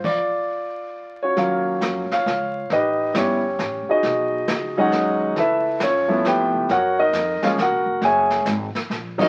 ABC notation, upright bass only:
X:1
M:3/4
L:1/8
Q:"Swing" 1/4=135
K:Dphr
V:1 name="Upright bass" clef=bass
z6 | [K:Ebm] E,,2 F,, z D,,2 | =A,,,2 =G,,,2 A,,, z | =B,,,2 D,,2 ^D,,2 |
D,,2 F,,2 (3=G,, F,, D,, | G,,2 F,, z (3D,, B,,, G,,, | G,,,2 A,,, z B,,,2 |]